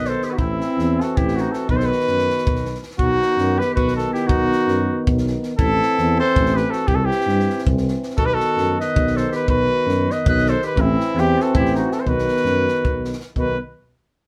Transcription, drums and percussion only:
0.05 snare
0.22 snare
0.38 kick
0.61 snare
0.79 snare
1.01 snare
1.17 kick
1.28 snare
1.37 snare
1.53 snare
1.69 kick
1.80 snare
1.92 snare
2.00 snare
2.07 snare
2.18 snare
2.30 snare
2.38 snare
2.47 kick
2.55 snare
2.65 snare
2.75 snare
2.83 snare
2.91 snare
2.99 kick
3.22 snare
3.38 snare
3.61 snare
3.77 kick
3.88 snare
3.98 snare
4.15 snare
4.29 kick
4.52 snare
4.68 snare
5.07 kick
5.18 snare
5.27 snare
5.43 snare
5.59 kick
5.82 snare
5.98 snare
6.36 kick
6.46 snare
6.57 snare
6.73 snare
6.88 kick
7.11 snare
7.21 snare
7.29 snare
7.39 snare
7.50 snare
7.58 snare
7.67 kick
7.77 snare
7.88 snare
8.03 snare
8.10 snare
8.18 kick
8.40 snare
8.58 snare
8.80 snare
8.96 kick
9.07 snare
9.17 snare
9.32 snare
9.48 kick
9.89 snare
10.10 snare
10.26 kick
10.38 snare
10.46 snare
10.62 snare
10.77 kick
11.00 snare
11.17 snare
11.40 snare
11.55 kick
11.65 snare
11.75 snare
11.92 snare
12.07 kick
12.18 snare
12.28 snare
12.36 snare
12.46 snare
12.68 snare
12.85 kick
13.05 snare
13.13 snare
13.20 snare
13.36 kick

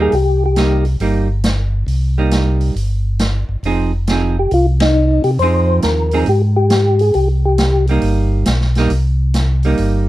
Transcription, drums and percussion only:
0.12 open hi-hat
0.56 snare, closed hi-hat
0.85 open hi-hat
1.00 open hi-hat
1.44 snare, closed hi-hat
1.88 open hi-hat
2.31 snare, closed hi-hat
2.61 open hi-hat
2.76 open hi-hat
3.19 snare, closed hi-hat
3.63 open hi-hat
4.07 snare, closed hi-hat
4.51 open hi-hat
4.80 snare, ride
5.24 open hi-hat
5.39 open hi-hat
5.82 snare, closed hi-hat
6.11 open hi-hat
6.26 open hi-hat
6.70 snare, closed hi-hat
6.99 open hi-hat
7.14 open hi-hat
7.58 snare, closed hi-hat
7.87 open hi-hat
8.02 open hi-hat
8.46 snare, closed hi-hat
8.61 snare
8.75 snare, open hi-hat
8.90 open hi-hat
9.34 snare, closed hi-hat
9.63 open hi-hat
9.77 open hi-hat

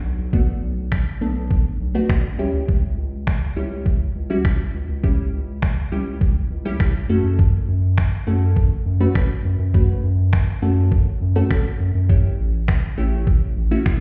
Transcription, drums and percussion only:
0.33 kick
0.92 finger snap, kick
1.51 kick
2.09 finger snap, kick
2.68 kick
3.27 finger snap, kick
3.86 kick
4.45 finger snap, kick
5.04 kick
5.62 finger snap, kick
6.21 kick
6.80 finger snap, kick
7.39 kick
7.98 finger snap, kick
8.56 kick
9.15 finger snap, kick
9.74 kick
10.33 finger snap, kick
10.92 kick
11.51 finger snap, kick
12.09 kick
12.68 finger snap, kick
13.27 kick
13.86 finger snap, kick

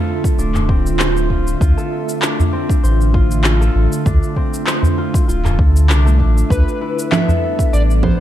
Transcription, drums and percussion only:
0.24 kick, shaker
0.39 shaker
0.55 clap, udu, shaker
0.69 kick
0.86 shaker
0.99 clap, shaker
1.17 shaker
1.30 kick
1.47 shaker
1.61 kick, shaker
1.78 shaker
2.09 shaker
2.22 clap, shaker
2.40 udu, shaker
2.69 kick, shaker
2.84 shaker
3.01 shaker
3.14 kick
3.31 shaker
3.44 clap, shaker
3.62 shaker
3.92 shaker
4.06 kick, shaker
4.23 shaker
4.36 kick
4.54 shaker
4.67 clap, shaker
4.83 udu, shaker
5.14 kick, shaker
5.29 shaker
5.45 clap, udu, shaker
5.59 kick
5.76 shaker
5.90 clap, shaker
6.07 shaker
6.20 kick
6.38 shaker
6.50 kick, shaker
6.68 shaker
6.99 shaker
7.12 clap, low conga, shaker
7.28 udu, shaker
7.59 kick, shaker
7.74 shaker
7.90 shaker
8.03 kick, low conga

